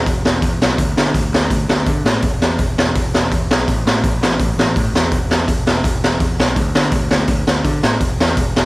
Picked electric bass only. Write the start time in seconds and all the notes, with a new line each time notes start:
0.06 E1
0.25 E1
0.42 E2
0.60 B1
0.79 D2
0.97 D3
1.15 D2
1.32 D2
1.51 D2
1.68 D2
1.87 D3
2.05 A2
2.23 E1
2.41 E2
2.59 E1
2.77 E1
2.96 E1
3.14 E1
3.32 E2
3.50 B1
3.68 A1
3.86 A2
4.04 A1
4.21 A1
4.40 A1
4.57 A1
4.76 A2
4.93 E2
5.12 E1
5.30 E2
5.48 E1
5.66 E1
5.84 E1
6.03 E1
6.20 E2
6.39 B1
6.56 D2
6.74 D3
6.92 D2
7.11 D2
7.28 D2
7.47 D2
7.64 D3
7.84 A2
8.01 E1
8.19 E2
8.37 E1
8.56 E1